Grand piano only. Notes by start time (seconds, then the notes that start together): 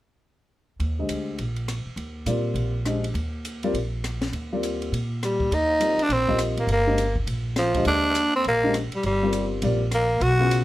0.99 D3 G#3 G4 C5 D#5
2.26 G3 C4 F4 A#4 D5
2.86 G#3 D4 G4 C5 D#5
3.64 G3 C4 F4 A#4 D5
4.53 G3 C4 F4 A#4 D5
5.80 G3 C4 F4 A#4 D5
6.28 G3 C4 F4 A#4 D#5
6.86 G#3 D4 G4 C5 D#5
7.75 D3 G#3 G4 C5 D#5
8.63 G#3 D4 G4 C5 D#5
9.23 G3 C4 F4 A#4 D5
9.63 G3 C4 F4 A#4 D5
10.39 C#3 F#3 B3 F4 G#4